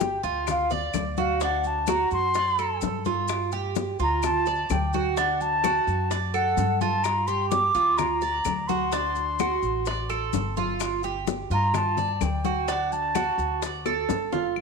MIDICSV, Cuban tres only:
0, 0, Header, 1, 2, 480
1, 0, Start_track
1, 0, Key_signature, -2, "minor"
1, 0, Tempo, 469484
1, 1447, Time_signature, 4, 2, 24, 8
1, 14938, End_track
2, 0, Start_track
2, 0, Title_t, "Cuban tres"
2, 0, Program_c, 0, 25
2, 0, Note_on_c, 0, 67, 68
2, 230, Note_off_c, 0, 67, 0
2, 239, Note_on_c, 0, 65, 77
2, 708, Note_off_c, 0, 65, 0
2, 723, Note_on_c, 0, 74, 72
2, 1190, Note_off_c, 0, 74, 0
2, 1203, Note_on_c, 0, 66, 77
2, 1438, Note_off_c, 0, 66, 0
2, 1443, Note_on_c, 0, 62, 79
2, 1910, Note_off_c, 0, 62, 0
2, 1925, Note_on_c, 0, 66, 72
2, 2391, Note_off_c, 0, 66, 0
2, 2404, Note_on_c, 0, 74, 64
2, 2638, Note_off_c, 0, 74, 0
2, 2645, Note_on_c, 0, 69, 76
2, 3111, Note_off_c, 0, 69, 0
2, 3127, Note_on_c, 0, 65, 74
2, 3592, Note_off_c, 0, 65, 0
2, 3605, Note_on_c, 0, 67, 70
2, 4071, Note_off_c, 0, 67, 0
2, 4086, Note_on_c, 0, 65, 76
2, 4551, Note_off_c, 0, 65, 0
2, 4568, Note_on_c, 0, 74, 80
2, 5032, Note_off_c, 0, 74, 0
2, 5051, Note_on_c, 0, 66, 75
2, 5281, Note_off_c, 0, 66, 0
2, 5288, Note_on_c, 0, 62, 81
2, 5752, Note_off_c, 0, 62, 0
2, 5764, Note_on_c, 0, 66, 71
2, 6230, Note_off_c, 0, 66, 0
2, 6244, Note_on_c, 0, 74, 70
2, 6477, Note_off_c, 0, 74, 0
2, 6481, Note_on_c, 0, 69, 74
2, 6948, Note_off_c, 0, 69, 0
2, 6967, Note_on_c, 0, 65, 76
2, 7431, Note_off_c, 0, 65, 0
2, 7441, Note_on_c, 0, 67, 77
2, 7908, Note_off_c, 0, 67, 0
2, 7920, Note_on_c, 0, 65, 79
2, 8387, Note_off_c, 0, 65, 0
2, 8403, Note_on_c, 0, 74, 78
2, 8869, Note_off_c, 0, 74, 0
2, 8885, Note_on_c, 0, 66, 82
2, 9117, Note_off_c, 0, 66, 0
2, 9124, Note_on_c, 0, 62, 79
2, 9589, Note_off_c, 0, 62, 0
2, 9608, Note_on_c, 0, 66, 66
2, 10071, Note_off_c, 0, 66, 0
2, 10090, Note_on_c, 0, 74, 69
2, 10319, Note_off_c, 0, 74, 0
2, 10322, Note_on_c, 0, 69, 75
2, 10788, Note_off_c, 0, 69, 0
2, 10807, Note_on_c, 0, 65, 76
2, 11271, Note_off_c, 0, 65, 0
2, 11287, Note_on_c, 0, 67, 68
2, 11751, Note_off_c, 0, 67, 0
2, 11770, Note_on_c, 0, 65, 76
2, 12232, Note_off_c, 0, 65, 0
2, 12246, Note_on_c, 0, 74, 71
2, 12710, Note_off_c, 0, 74, 0
2, 12727, Note_on_c, 0, 66, 78
2, 12958, Note_off_c, 0, 66, 0
2, 12964, Note_on_c, 0, 62, 82
2, 13430, Note_off_c, 0, 62, 0
2, 13445, Note_on_c, 0, 66, 70
2, 13910, Note_off_c, 0, 66, 0
2, 13929, Note_on_c, 0, 74, 69
2, 14159, Note_off_c, 0, 74, 0
2, 14168, Note_on_c, 0, 69, 74
2, 14632, Note_off_c, 0, 69, 0
2, 14646, Note_on_c, 0, 65, 70
2, 14878, Note_off_c, 0, 65, 0
2, 14938, End_track
0, 0, End_of_file